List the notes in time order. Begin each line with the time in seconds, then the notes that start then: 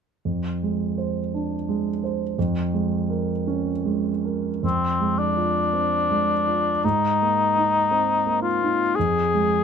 0.25 F2
0.63 G#3
0.98 C5
1.34 D4
1.69 G#3
2.04 C5
2.39 F2
2.74 G#3
3.10 A#4
3.47 C#4
3.85 G#3
4.25 A#4
4.62 F2 C4
5.00 G#3
5.19 D4
5.37 F4
5.73 C4
6.11 G#3
6.47 F4
6.84 G#2 D#4
7.22 A#3
7.57 D#4
7.91 C4
8.26 A#3
8.42 F4
8.63 D#4
8.95 F2 G#4
9.35 G#3